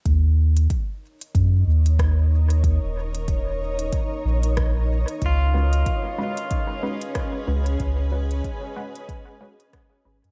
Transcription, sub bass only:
X:1
M:4/4
L:1/16
Q:"Swing 16ths" 1/4=93
K:Ebm
V:1 name="Sub bass" clef=bass
E,,4 z4 G,,2 E,,6- | E,, E,,,6- E,,, z2 B,,,4- B,,, z | D,,4 z8 z2 D,,2 | D,,4 z8 z2 A,,, G,, |]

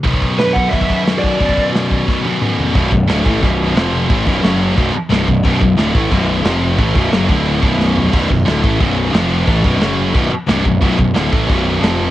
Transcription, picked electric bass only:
X:1
M:4/4
L:1/8
Q:1/4=178
K:Bm
V:1 name="Picked electric bass" clef=bass
z8 | z8 | B,,,, B,,,, D,,, A,,, B,,,,2 =F,,,2 | A,,, B,,,, F,,,2 B,,,, z =C,,, B,,,, |
B,,,, B,,,, D,,, A,,, B,,,,2 =F,,,2 | A,,, B,,,, F,,, D,,,2 B,,,,3 | B,,,, B,,,, D,,, A,,, B,,,,2 =F,,,2 | A,,, B,,,, F,,,2 B,,,, z =C,,, B,,,, |
B,,,, B,,,, D,,, A,,, B,,,,2 =F,,,2 |]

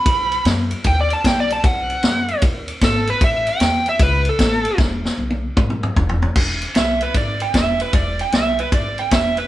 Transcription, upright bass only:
X:1
M:4/4
L:1/8
Q:"Swing" 1/4=152
K:Bdor
V:1 name="Upright bass" clef=bass
B,,,2 F,,2 ^D,,2 B,,,2 | B,,,2 F,,2 ^D,,2 G,,,2 | A,,,2 E,,2 C,,2 A,,,2 | E,,,2 B,,,2 G,,,2 E,,,2 |
E,,,2 B,,,2 G,,,2 E,,,2 | E,,,2 B,,,2 G,,,2 E,,,2 |]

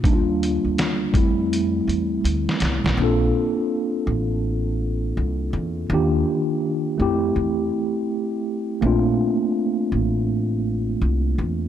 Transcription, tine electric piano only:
X:1
M:4/4
L:1/8
Q:"Swing 16ths" 1/4=82
K:Bb
V:1 name="Tine electric piano"
[G,B,DEF]3 [G,A,C=E]4- [G,A,CE] | [B,CDFA]8 | [E,B,DFG]3 [A,C=EG]4- [A,CEG] | [A,B,CDF]8 |]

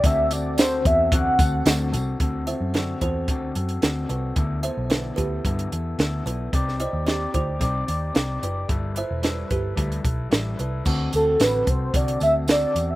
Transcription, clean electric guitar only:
X:1
M:4/4
L:1/8
Q:1/4=111
K:Dmix
V:1 name="Clean electric guitar"
[D,CFA] [CFA] [D,CFA] [CFA] [D,CFA] [CFA] [D,CFA] [CFA] | [D,CFA] [CFA] [D,CFA] [CFA] [D,CFA] [CFA] [D,CFA] [CFA] | [D,B,EA] [B,EA] [D,B,EA] [B,EA] [D,B,EA] [B,EA] [D,B,EA] [B,EA] | [C_EGd] [EGd] [CEGd] [EGd] [CEGd] [EGd] [CEGd] [EGd] |
[G,EAB] [EAB] [G,EAB] [EAB] [G,EAB] [EAB] [G,EAB] [EAB] | [D,CFA] [CFA] [D,CFA] [CFA] [D,CFA] [CFA] [D,CFA] [CFA] |]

